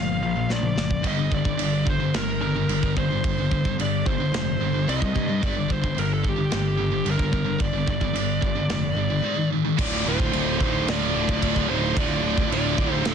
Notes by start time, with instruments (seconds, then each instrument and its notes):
Already playing: picked electric bass G1, distorted electric guitar A#2 F3, lead electric guitar F5
0.21 picked electric bass A#1, distorted electric guitar A#2 F3
0.36 distorted electric guitar A#2 F3
0.49 picked electric bass A#1, distorted electric guitar A#2 F3, lead electric guitar D5, snare
0.61 distorted electric guitar A#2 F3, mid tom
0.76 picked electric bass F#1, distorted electric guitar A#2 F3, snare
0.89 distorted electric guitar A#2 F3, kick
1.02 picked electric bass G1, distorted electric guitar G2 D3 G3, kick, china
1.07 lead electric guitar D#5
1.17 distorted electric guitar G2 D3
1.30 picked electric bass G1, distorted electric guitar G2 D3, kick
1.34 lead electric guitar D5
1.44 distorted electric guitar G2 D3, kick
1.58 picked electric bass G1, distorted electric guitar G2 D3, china
1.87 distorted electric guitar G2 D3, lead electric guitar C5, kick
1.99 distorted electric guitar G2 D3
2.14 picked electric bass G1, distorted electric guitar G2 D3, lead electric guitar A#4, snare, china
2.41 distorted electric guitar G2 D3, lead electric guitar A#4
2.55 distorted electric guitar G2 D3
2.68 picked electric bass G1, distorted electric guitar G2 D3, china
2.83 distorted electric guitar G2 D3, kick
2.97 distorted electric guitar G2 D3, lead electric guitar C5, kick
3.10 distorted electric guitar G2 D3
3.23 picked electric bass G1, distorted electric guitar G2 D3, kick, china
3.38 distorted electric guitar G2 D3
3.51 picked electric bass G1, distorted electric guitar G2 D3, kick
3.64 distorted electric guitar G2 D3, kick
3.78 picked electric bass G1, distorted electric guitar G2 D3, lead electric guitar D5, china
4.06 picked electric bass G1, distorted electric guitar G2 D3, lead electric guitar C5, kick
4.18 distorted electric guitar G2 D3
4.32 picked electric bass F1, distorted electric guitar G2 D3, snare, china
4.60 picked electric bass G1, distorted electric guitar G2 D3
4.73 distorted electric guitar G2 D3
4.87 picked electric bass C2, distorted electric guitar C3 G3 C4, lead electric guitar D#5, china
5.01 distorted electric guitar C3 G3, kick
5.15 picked electric bass G2, distorted electric guitar C3 G3, kick
5.29 distorted electric guitar C3 G3
5.42 picked electric bass G1, distorted electric guitar G2 D3 G3, lead electric guitar D5, kick, china
5.57 distorted electric guitar G2 D3
5.70 picked electric bass G1, distorted electric guitar G2 D3, lead electric guitar C5, kick
5.84 distorted electric guitar G2 D3, kick
5.96 picked electric bass G1, distorted electric guitar G2 D3, lead electric guitar A#4, china
6.14 lead electric guitar A4
6.24 distorted electric guitar G2 D3, kick
6.29 lead electric guitar G4
6.38 distorted electric guitar G2 D3
6.52 picked electric bass G1, distorted electric guitar G2 D3, snare, china
6.79 distorted electric guitar G2 D3
6.91 distorted electric guitar G2 D3
7.04 picked electric bass G1, distorted electric guitar G2 D3, china
7.11 lead electric guitar A#4
7.17 distorted electric guitar G2 D3, kick
7.32 distorted electric guitar G2 D3, kick
7.46 distorted electric guitar G2 D3
7.60 picked electric bass G1, distorted electric guitar G2 D3, lead electric guitar D5, kick, china
7.73 distorted electric guitar G2 D3
7.87 picked electric bass G1, distorted electric guitar G2 D3, lead electric guitar D5, kick
8.01 distorted electric guitar G2 D3, kick
8.14 picked electric bass G1, distorted electric guitar G2 D3, china
8.42 picked electric bass G1, distorted electric guitar G2 D3, kick
8.56 distorted electric guitar G2 D3
8.69 picked electric bass F1, distorted electric guitar G2 D3, snare, china
8.95 picked electric bass G1, distorted electric guitar G2 D3
9.09 distorted electric guitar G2 D3
9.21 distorted electric guitar G#2 D#3 G#3
9.36 distorted electric guitar G#2 D#3
9.50 distorted electric guitar G#2 D#3
9.65 distorted electric guitar G#2 D#3
9.77 picked electric bass D1, distorted electric guitar D2 A2 D3, string section D3 A3 F4, lead electric guitar F4 D5, kick, crash
10.06 picked electric bass D1, distorted electric guitar D2 A2 D3, lead electric guitar F4 C5
10.20 kick
10.32 picked electric bass D1, distorted electric guitar D2 A2 D3, crash
10.60 picked electric bass D1, distorted electric guitar D2 A2 D3, lead electric guitar D#4 C5, kick
10.87 picked electric bass D1, distorted electric guitar D2 A2 D3, lead electric guitar F4 D5, snare, crash
11.14 picked electric bass D1, distorted electric guitar D2 A2 D3
11.29 kick
11.42 picked electric bass D1, distorted electric guitar D2 A2 D3, kick, crash
11.56 kick
11.69 picked electric bass D1, distorted electric guitar D2 A2 D3, lead electric guitar D#4 C5
11.96 picked electric bass D1, distorted electric guitar D2 A2 D3, lead electric guitar F4 D5, kick, crash
12.24 distorted electric guitar D2 A2 D3
12.38 kick
12.50 picked electric bass D1, distorted electric guitar D2 A2 D3, lead electric guitar F4 D5, crash
12.78 picked electric bass D1, distorted electric guitar D2 A2 D3, kick
13.05 picked electric bass D1, distorted electric guitar D2 A2 D3, lead electric guitar D4 A4, snare, crash